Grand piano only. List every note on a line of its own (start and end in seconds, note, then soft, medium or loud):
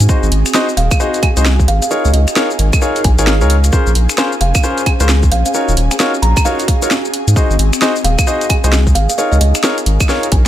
0.09 0.26 D#4 medium
0.09 0.26 F#4 medium
0.09 0.26 G#4 medium
0.09 0.26 C5 medium
0.09 0.26 D#5 medium
0.54 0.66 D#4 medium
0.54 0.66 F#4 medium
0.54 0.66 G#4 medium
0.54 0.66 C5 medium
0.54 0.66 D#5 loud
1.00 1.17 D#4 medium
1.00 1.17 F#4 medium
1.00 1.17 G#4 medium
1.00 1.17 C5 medium
1.00 1.17 D#5 loud
1.37 1.44 D#4 medium
1.37 1.44 F#4 medium
1.37 1.44 G#4 medium
1.37 1.44 C5 medium
1.37 1.44 D#5 medium
1.91 2.08 D#4 medium
1.91 2.08 F4 medium
1.91 2.08 G#4 medium
1.91 2.08 A#4 medium
1.91 2.08 C#5 medium
2.36 2.48 D#4 loud
2.36 2.48 F4 medium
2.36 2.48 G#4 medium
2.36 2.48 A#4 medium
2.36 2.48 C#5 loud
2.82 2.99 D#4 medium
2.82 2.99 F4 medium
2.82 2.99 G#4 medium
2.82 2.99 A#4 medium
2.82 2.99 C#5 medium
3.19 3.32 D#4 medium
3.19 3.32 F4 medium
3.19 3.32 G#4 medium
3.19 3.32 A#4 medium
3.19 3.32 C#5 loud
3.41 3.54 D#4 medium
3.41 3.54 F4 medium
3.41 3.54 G#4 medium
3.41 3.54 A#4 medium
3.41 3.54 C#5 medium
3.73 3.90 C#4 medium
3.73 3.90 F4 medium
3.73 3.90 G#4 medium
3.73 3.90 A#4 medium
3.73 3.90 C5 medium
4.18 4.30 C#4 medium
4.18 4.30 F4 medium
4.18 4.30 G#4 medium
4.18 4.30 A#4 medium
4.18 4.30 C5 loud
4.64 4.80 C#4 medium
4.64 4.80 F4 medium
4.64 4.80 G#4 medium
4.64 4.80 A#4 medium
4.64 4.80 C5 loud
5.00 5.08 C#4 medium
5.00 5.08 F4 medium
5.00 5.08 G#4 medium
5.00 5.08 A#4 medium
5.00 5.08 C5 medium
5.55 5.71 D#4 medium
5.55 5.71 F4 medium
5.55 5.71 F#4 medium
5.55 5.71 A#4 medium
5.55 5.71 C#5 medium
6.00 6.12 D#4 medium
6.00 6.12 F4 medium
6.00 6.12 F#4 medium
6.00 6.12 A#4 medium
6.00 6.12 C#5 loud
6.45 6.62 D#4 medium
6.45 6.62 F4 medium
6.45 6.62 F#4 medium
6.45 6.62 A#4 medium
6.45 6.62 C#5 loud
6.82 6.89 D#4 medium
6.82 6.89 F4 medium
6.82 6.89 F#4 medium
6.82 6.89 A#4 medium
6.82 6.89 C#5 medium
7.36 7.53 D#4 medium
7.36 7.53 F#4 medium
7.36 7.53 G#4 medium
7.36 7.53 C5 medium
7.36 7.53 D#5 medium
7.82 7.93 D#4 medium
7.82 7.93 F#4 medium
7.82 7.93 G#4 medium
7.82 7.93 C5 medium
7.82 7.93 D#5 loud
8.27 8.44 D#4 medium
8.27 8.44 F#4 medium
8.27 8.44 G#4 medium
8.27 8.44 C5 medium
8.27 8.44 D#5 loud
8.64 8.71 D#4 medium
8.64 8.71 F#4 medium
8.64 8.71 G#4 medium
8.64 8.71 C5 medium
8.64 8.71 D#5 medium
9.18 9.35 D#4 medium
9.18 9.35 F4 medium
9.18 9.35 G#4 medium
9.18 9.35 A#4 medium
9.18 9.35 C#5 medium
9.64 9.75 D#4 loud
9.64 9.75 F4 medium
9.64 9.75 G#4 medium
9.64 9.75 A#4 medium
9.64 9.75 C#5 loud
10.09 10.26 D#4 medium
10.09 10.26 F4 medium
10.09 10.26 G#4 medium
10.09 10.26 A#4 medium
10.09 10.26 C#5 loud